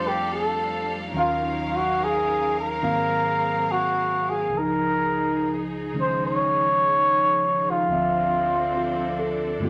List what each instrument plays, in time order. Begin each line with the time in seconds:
Already playing: tine electric piano F2 F3 G3 A3 C4 D4 F4 G4, string section G3 C4 D4 A4 F5
0.08 flugelhorn G4
0.34 flugelhorn A4
1.11 tine electric piano D#2 D#3 F#3, string section F#3 C#4 D#4 A#4
1.16 tine electric piano C#4 F5, flugelhorn F4
1.67 flugelhorn F4
1.76 flugelhorn F#4
2.04 flugelhorn G#4
2.60 flugelhorn A#4
2.81 tine electric piano G#2 D#3 F#3 A#3 C4 F5, string section C4 G#4
3.71 flugelhorn F#4
4.30 flugelhorn G#4
4.47 tine electric piano C#2 C#3
4.52 string section F3 D#4 G#4, tine electric piano F3
4.58 tine electric piano D#4, flugelhorn A#4
5.93 tine electric piano C#3 D#3 G#3 C#4
6.01 flugelhorn C5
6.27 flugelhorn C#5
7.71 flugelhorn F4
7.88 tine electric piano D2 D3 F3
7.92 tine electric piano C4 E5, string section C4 D4 A4
8.77 tine electric piano F4
9.19 tine electric piano A4
9.59 tine electric piano G2 D3 G#3, string section B4
9.63 string section G#3 G4, tine electric piano B3 F4